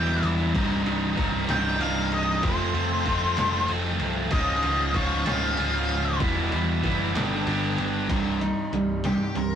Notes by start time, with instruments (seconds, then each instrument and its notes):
Already playing: picked electric bass E1, distorted electric guitar E2 B2 E3 G3 B3 E4, lead electric guitar G5
0.23 picked electric bass E1, ride
0.53 picked electric bass C1, distorted electric guitar C2 G2 C3 G3 D#4, kick, crash
0.85 picked electric bass C1, distorted electric guitar C3 G3 D#4, ride
1.16 picked electric bass C1, distorted electric guitar G2 C3 G3 D#4, kick, ride
1.47 picked electric bass C1, distorted electric guitar C2 G2 C3 G3 D#4, lead electric guitar G5, snare, ride
1.79 picked electric bass C1, distorted electric guitar G2 C3 G3 D#4, lead electric guitar F5, ride
2.12 lead electric guitar D#5, ride
2.41 picked electric bass F1, distorted electric guitar F2 C3 F3 A3 C4 F4, kick, ride
2.46 lead electric guitar C5
2.73 picked electric bass F2, distorted electric guitar F3 A3 C4 F4, ride
3.04 picked electric bass F1, distorted electric guitar F3 A3 C4 F4, kick, ride
3.36 picked electric bass F1, distorted electric guitar F2 C3 F3 A3 C4 F4, snare, ride
3.68 picked electric bass F1, distorted electric guitar F3 A3 C4 F4, ride
4.00 picked electric bass C1, ride
4.31 picked electric bass C#1, distorted electric guitar C#2 G#2 C#3 F3 F4, lead electric guitar D#5, kick, ride
4.63 picked electric bass C#1, distorted electric guitar C#3 F3 F4, ride
4.93 picked electric bass C#1, distorted electric guitar G#2 C#3 F3 F4, lead electric guitar C#5, kick, ride
5.25 picked electric bass C#1, distorted electric guitar C#2 G#2 C#3 F3 F4, lead electric guitar F5, snare, ride
5.56 picked electric bass C#1, distorted electric guitar G#2 C#3 F3 F4, ride
5.89 ride
6.19 picked electric bass E1, distorted electric guitar E2 B2 E3 G3 B3 E4, kick, ride
6.51 picked electric bass E2, distorted electric guitar E3 G3 B3 E4, ride
6.82 picked electric bass F#1, distorted electric guitar E3 G3 B3 E4, kick, ride
7.13 picked electric bass G1, distorted electric guitar G2 D3 G3 B3 D4 G4, snare, ride
7.46 picked electric bass G1, distorted electric guitar G3 B3 D4 G4, ride
7.78 picked electric bass G1, ride
8.08 picked electric bass C1, distorted electric guitar C2 G2 C3, clean electric guitar C2, kick, closed hi-hat, crash
8.41 distorted electric guitar C2 G2, clean electric guitar D#4, closed hi-hat
8.72 picked electric bass C1, distorted electric guitar C2 G2, clean electric guitar G3, closed hi-hat
9.04 distorted electric guitar C2 G2, clean electric guitar G2, lead electric guitar G4, snare, closed hi-hat
9.35 picked electric bass C1, distorted electric guitar C2 G2, clean electric guitar C3, lead electric guitar A#4, closed hi-hat